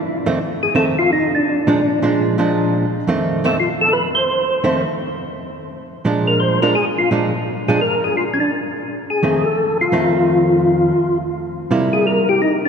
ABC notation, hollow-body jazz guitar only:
X:1
M:4/4
L:1/8
Q:"Swing" 1/4=170
K:Fmix
V:1 name="Hollow-body jazz guitar" clef=bass
z [F,,E,A,C] z2 [F,,E,A,C] z3 | z [B,,F,_A,D] z [B,,F,A,D]2 [B,,F,A,D]3 | z [F,,E,A,C]2 [F,,E,A,C] z4 | z2 [F,,E,A,C] z4 z |
z2 [B,,F,_A,D]3 [B,,F,A,D] z2 | [B,,F,_A,D] z2 [B,,F,A,D] z4 | z4 [F,,E,A,C] z3 | [F,,E,A,C]4- [F,,E,A,C] z3 |
z2 [C,G,B,=E]3 z3 |]